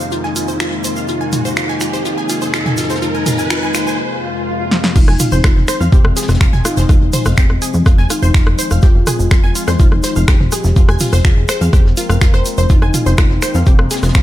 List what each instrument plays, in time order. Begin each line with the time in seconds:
Already playing: synth drone F2 C3, analog synth pad F2 C3 G#3 A#3, riser
0.00 shaker
0.11 soft synth lead D#4, synth pluck F4, closed hi-hat, shaker
0.24 synth pluck G#5, snare
0.36 synth pluck F4, closed hi-hat, open hi-hat, shaker
0.48 synth pluck C5, shaker
0.60 synth pluck F4, finger snap, snare, closed hi-hat, shaker
0.72 closed hi-hat
0.84 synth pluck C5, closed hi-hat, open hi-hat, shaker
0.96 synth pluck F5, shaker
1.08 soft synth lead D#4, synth pluck F4, closed hi-hat, shaker
1.21 synth pluck G#5
1.32 synth pluck F4, closed hi-hat, mid tom, open hi-hat, shaker
1.45 synth pluck C5, shaker
1.57 soft synth lead D#4, synth pluck F4, finger snap, snare, closed hi-hat, shaker
1.69 synth pluck G#5, snare
1.80 synth pluck F4, finger snap, closed hi-hat, open hi-hat, shaker
1.93 synth pluck C5, snare, shaker
2.05 soft synth lead D#4, synth pluck F4, closed hi-hat, shaker
2.18 synth pluck G#5
2.29 synth pluck F4, snare, closed hi-hat, open hi-hat, shaker
2.42 synth pluck C5, shaker
2.53 soft synth lead D#4, synth pluck F4, finger snap, snare, closed hi-hat, shaker
2.66 synth pluck G#5, snare, mid tom
2.77 synth pluck F4, snare, closed hi-hat, open hi-hat, shaker
2.84 snare, closed hi-hat
2.89 synth pluck C5, snare, closed hi-hat, shaker
2.96 snare, closed hi-hat
3.02 soft synth lead D#4, synth pluck F4, closed hi-hat, shaker
3.14 synth pluck G#5
3.26 soft synth lead D#4, synth pluck F4, mid tom, open hi-hat, shaker
3.39 synth pluck G#5, shaker
3.50 soft synth lead D#4, synth pluck F4, finger snap, snare, closed hi-hat, shaker
3.63 synth pluck G#5
3.74 soft synth lead D#4, synth pluck F4, finger snap, closed hi-hat, open hi-hat, shaker
3.87 synth pluck G#5, shaker
3.99 swell
4.71 snare
4.84 snare
4.96 analog synth bass F1, analog synth pad F3 G#3 C4, soft synth lead D#4, synth pluck F4 F5, kick, closed hi-hat, crash, shaker
5.08 analog synth bass F1, synth pluck G#5 G#6, cross-stick
5.19 synth pluck F4 F5, closed hi-hat, mid tom, open hi-hat, shaker
5.32 analog synth bass F1, synth pluck C5 C6, shaker
5.44 analog synth bass F1, synth pluck F4 F5, finger snap, kick, cross-stick, snare, closed hi-hat, shaker
5.56 analog synth bass F1, snare
5.68 synth pluck C5 C6, finger snap, cross-stick, closed hi-hat, open hi-hat, shaker
5.80 analog synth bass F2, synth pluck F5 F6, snare, shaker
5.92 analog synth bass F1, soft synth lead C4, synth pluck G4 G5, kick, closed hi-hat, shaker
6.05 analog synth bass F1, cross-stick
6.16 synth pluck G#4 G#5, snare, closed hi-hat, open hi-hat, shaker
6.23 snare, closed hi-hat
6.28 analog synth bass F1, cross-stick, snare, closed hi-hat, shaker
6.35 snare, closed hi-hat
6.41 synth pluck F4 F5, finger snap, kick, snare, shaker
6.53 analog synth bass F1, synth pluck G#5 G#6, snare, mid tom
6.65 soft synth lead D#4, synth pluck F4 F5, cross-stick, closed hi-hat, open hi-hat, shaker
6.77 analog synth bass F1, synth pluck C5 C6, snare, shaker
6.89 analog synth bass F1, synth pluck F4 F5, kick, cross-stick, closed hi-hat, shaker
7.02 analog synth bass F1
7.13 synth pluck C5 C6, mid tom, open hi-hat, shaker
7.25 analog synth bass F1, synth pluck F5 F6, cross-stick, shaker
7.37 analog synth bass F1, soft synth lead C4, synth pluck G4 G5, finger snap, kick, snare, closed hi-hat, shaker
7.50 analog synth bass F1, cross-stick
7.62 synth pluck G#4 G#5, closed hi-hat, open hi-hat, shaker
7.74 analog synth bass F2, shaker
7.86 analog synth bass F1, synth pluck F4 F5, kick, cross-stick, closed hi-hat, shaker
7.98 analog synth bass F1, synth pluck G#5 G#6, snare
8.10 soft synth lead D#4, synth pluck F4 F5, cross-stick, closed hi-hat, open hi-hat, shaker
8.22 analog synth bass F1, synth pluck C5 C6, shaker
8.34 analog synth bass F1, synth pluck F4 F5, finger snap, kick, snare, closed hi-hat, shaker
8.46 analog synth bass F1, cross-stick, closed hi-hat
8.58 synth pluck C5 C6, closed hi-hat, open hi-hat, shaker
8.71 analog synth bass F1, synth pluck F5 F6, cross-stick, shaker
8.82 analog synth bass F1, soft synth lead F4, synth pluck G4 G5, kick, closed hi-hat, shaker
8.95 analog synth bass F1
9.07 synth pluck G#4 G#5, cross-stick, closed hi-hat, mid tom, open hi-hat, shaker
9.19 analog synth bass F1, shaker
9.31 analog synth bass F1, synth pluck F4 F5, finger snap, kick, cross-stick, snare, closed hi-hat, shaker
9.43 analog synth bass F1, synth pluck G#5 G#6, snare
9.55 synth pluck F4 F5, closed hi-hat, open hi-hat, shaker
9.68 analog synth bass F2, synth pluck C5 C6, cross-stick, snare, shaker
9.79 analog synth bass F1, soft synth lead D#4, synth pluck F4 F5, kick, closed hi-hat, shaker
9.92 analog synth bass F1, cross-stick
10.03 synth pluck C5 C6, snare, closed hi-hat, open hi-hat, shaker
10.16 analog synth bass F1, synth pluck F5 F6, shaker
10.28 analog synth bass F1, synth pluck G4 G5, finger snap, kick, cross-stick, snare, closed hi-hat, shaker
10.40 analog synth bass F1, snare, mid tom
10.52 soft synth lead G4, synth pluck G#4 G#5, cross-stick, closed hi-hat, open hi-hat, shaker
10.64 analog synth bass F1, snare, shaker
10.76 analog synth bass F1, synth pluck F4 F5, kick, closed hi-hat, shaker
10.89 analog synth bass F1, synth pluck G#5 G#6, cross-stick
10.99 synth pluck F4 F5, mid tom, open hi-hat, shaker
11.13 analog synth bass F1, synth pluck C5 C6, cross-stick, shaker
11.25 analog synth bass F1, synth pluck F4 F5, soft synth lead G#4, finger snap, kick, snare, shaker
11.37 analog synth bass F1
11.49 synth pluck C5 C6, finger snap, cross-stick, closed hi-hat, open hi-hat, shaker
11.61 analog synth bass F2, synth pluck F5 F6, shaker
11.73 analog synth bass F1, synth pluck G4 G5, kick, cross-stick, closed hi-hat, shaker
11.85 analog synth bass F1, snare
11.97 synth pluck F4 F5, soft synth lead A#4, closed hi-hat, open hi-hat, shaker
12.10 analog synth bass F1, synth pluck F5 F6, cross-stick, shaker
12.21 analog synth bass F1, synth pluck F4 F5, finger snap, kick, snare, closed hi-hat, shaker
12.34 analog synth bass F1, synth pluck C5 C6, cross-stick, closed hi-hat
12.45 closed hi-hat, open hi-hat, shaker
12.58 analog synth bass F1, synth pluck C5 C6, shaker
12.70 analog synth pad G#3 A#3, soft synth lead D#4, synth pluck F4 F5, kick, closed hi-hat, shaker
12.82 analog synth bass F1, synth pluck G#5 G#6, cross-stick
12.94 synth pluck F4 F5, closed hi-hat, mid tom, open hi-hat, shaker
13.06 analog synth bass F1, synth pluck C5 C6, shaker
13.18 analog synth bass F1, synth pluck F4 F5, finger snap, kick, cross-stick, snare, closed hi-hat, shaker
13.29 analog synth bass F1, snare
13.42 synth pluck C5 C6, finger snap, cross-stick, closed hi-hat, open hi-hat, shaker
13.55 analog synth bass F2, synth pluck F5 F6, snare, shaker
13.66 analog synth bass F1, soft synth lead C4, synth pluck G4 G5, kick, closed hi-hat, shaker
13.79 analog synth bass F1, cross-stick
13.91 synth pluck G#4 G#5, snare, closed hi-hat, open hi-hat, shaker
13.96 snare, closed hi-hat
14.03 analog synth bass F1, cross-stick, snare, closed hi-hat, shaker
14.09 snare, closed hi-hat
14.14 analog synth bass F1, synth pluck F4 F5, finger snap, kick, snare, closed hi-hat, shaker